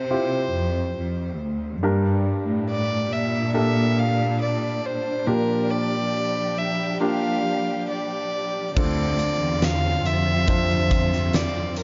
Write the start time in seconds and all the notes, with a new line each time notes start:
Already playing: C3 C4 E4 F4 A4 C5
0.10 C4 E4 F4 G4
0.53 F2
0.96 F2
1.39 D2
1.82 G2 G3 D4 G4 A#4
2.47 A2
2.71 D5
3.11 A#2 E5
3.54 A#3 D4 G4 A4 E5
3.99 F5
4.42 D5
4.86 C5
5.26 A#2 F3 G3 A#3 D4 F4 G4 A#4
5.71 D5
6.58 E5
7.00 A#3 D4 F4 G4 F5
7.91 D5
8.76 D2 C3 D3 C4 D4 F4 A4 D5, kick, crash
9.19 closed hi-hat
9.41 E2
9.62 F5, snare, closed hi-hat
10.05 F2 E5, closed hi-hat
10.48 C4 D4 F4 C5, kick, closed hi-hat
10.70 closed hi-hat
10.91 kick, closed hi-hat
11.13 snare
11.33 D5, snare, closed hi-hat
11.76 A#4, closed hi-hat